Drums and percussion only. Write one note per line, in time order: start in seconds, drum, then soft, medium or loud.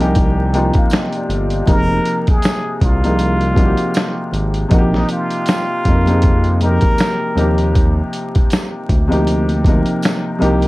0.00 closed hi-hat soft
0.15 kick loud
0.15 closed hi-hat medium
0.54 closed hi-hat medium
0.73 kick medium
0.73 closed hi-hat soft
0.90 finger snap medium
0.90 snare loud
0.90 closed hi-hat medium
0.90 tambourine medium
1.13 closed hi-hat soft
1.30 closed hi-hat medium
1.50 closed hi-hat soft
1.67 kick medium
1.67 closed hi-hat medium
2.05 closed hi-hat medium
2.27 kick medium
2.27 closed hi-hat soft
2.42 finger snap medium
2.42 snare loud
2.42 closed hi-hat medium
2.42 tambourine medium
2.81 kick medium
2.81 closed hi-hat medium
3.04 closed hi-hat soft
3.19 closed hi-hat medium
3.41 closed hi-hat soft
3.56 kick medium
3.56 closed hi-hat medium
3.77 closed hi-hat soft
3.94 finger snap medium
3.94 snare loud
3.94 closed hi-hat medium
3.94 tambourine medium
4.33 closed hi-hat medium
4.54 closed hi-hat soft
4.71 kick loud
4.71 closed hi-hat medium
4.94 snare soft
5.09 closed hi-hat medium
5.30 closed hi-hat soft
5.46 finger snap medium
5.46 snare loud
5.46 closed hi-hat medium
5.46 tambourine medium
5.85 kick medium
5.85 closed hi-hat medium
6.07 closed hi-hat soft
6.22 kick loud
6.22 closed hi-hat medium
6.44 closed hi-hat soft
6.61 closed hi-hat medium
6.81 kick medium
6.81 closed hi-hat soft
6.98 finger snap medium
6.98 snare loud
6.98 closed hi-hat medium
6.98 tambourine medium
7.37 closed hi-hat medium
7.58 closed hi-hat soft
7.75 kick loud
7.75 closed hi-hat medium
8.13 closed hi-hat medium
8.35 kick medium
8.35 closed hi-hat soft
8.50 finger snap medium
8.50 snare loud
8.50 closed hi-hat medium
8.50 tambourine medium
8.89 kick medium
8.89 closed hi-hat medium
9.12 closed hi-hat soft
9.27 closed hi-hat medium
9.49 closed hi-hat soft
9.64 kick medium
9.64 closed hi-hat medium
9.86 closed hi-hat soft
10.02 finger snap medium
10.02 snare loud
10.02 closed hi-hat medium
10.02 tambourine medium
10.42 closed hi-hat medium
10.62 closed hi-hat soft